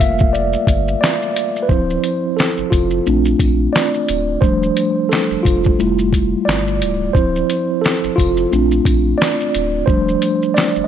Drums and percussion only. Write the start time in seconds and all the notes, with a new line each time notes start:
0.00 kick, closed hi-hat, tambourine, shaker
0.19 kick, shaker
0.34 shaker
0.53 shaker
0.67 kick, closed hi-hat, tambourine, shaker
0.88 shaker
1.03 snare, clap, shaker
1.22 shaker
1.36 closed hi-hat, tambourine, shaker
1.56 shaker
1.69 kick, shaker
1.90 shaker
2.04 closed hi-hat, tambourine, shaker
2.38 snare, clap, shaker
2.57 shaker
2.72 kick, closed hi-hat, tambourine, shaker
2.90 shaker
3.07 shaker
3.25 shaker
3.40 kick, closed hi-hat, tambourine, shaker
3.75 snare, clap, shaker
3.94 shaker
4.08 closed hi-hat, tambourine, shaker
4.42 kick, shaker
4.63 shaker
4.76 closed hi-hat, tambourine, shaker
5.11 snare, clap, shaker
5.31 shaker
5.45 kick, closed hi-hat, tambourine, shaker
5.64 kick, shaker
5.80 shaker
5.99 shaker
6.13 kick, closed hi-hat, tambourine, shaker
6.48 snare, clap, shaker
6.67 shaker
6.81 closed hi-hat, tambourine, shaker
7.15 kick, shaker
7.36 shaker
7.50 closed hi-hat, tambourine, shaker
7.84 snare, clap, shaker
8.04 shaker
8.18 kick, closed hi-hat, tambourine, shaker
8.37 shaker
8.52 shaker
8.71 shaker
8.85 kick, closed hi-hat, tambourine, shaker
9.21 snare, clap, shaker
9.40 shaker
9.54 closed hi-hat, tambourine, shaker
9.88 kick, shaker
10.08 shaker
10.22 closed hi-hat, tambourine, shaker
10.42 shaker
10.56 snare, clap, shaker
10.76 shaker